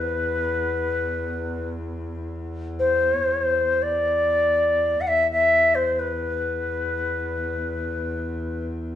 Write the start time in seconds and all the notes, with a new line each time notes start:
Already playing: E2 B4
2.79 C5
3.82 D5
4.99 E2 F#5
5.07 E5
5.31 E5
5.75 C5
5.99 B4